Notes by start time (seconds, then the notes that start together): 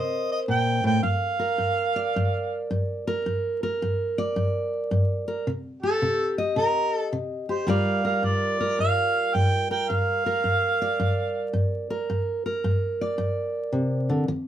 Already playing: C3 A#4 C5 D#5
0.32 D#5
0.48 A#2 G5
0.84 A2 G5
1.03 G2 F5
1.39 A#4
1.58 G2
1.96 D5
2.16 G2
2.71 G2
3.07 A#4
3.26 G2
3.63 A#4
3.82 G2
4.18 D5
4.36 G2
4.91 G2
5.28 A#4
5.47 C3
5.82 G4 A4
6.02 C3
6.38 D#5
6.56 C3 A#4
6.95 A4
7.13 C3
7.49 G4 C5
7.67 G2 G3 F4 A#4 D5 F5
8.05 A#4 F5
8.23 G2 D5
8.61 A#4
8.79 G2 F5
9.35 G2 G5
9.71 A#4 G5
9.89 G2 F5
10.26 A#4
10.44 G2
10.82 D5
11.00 G2
11.53 G2
11.90 A#4
12.10 G2
12.46 A#4
12.64 G2
13.01 D5
13.18 G2
13.72 C3
14.09 D3
14.28 D#3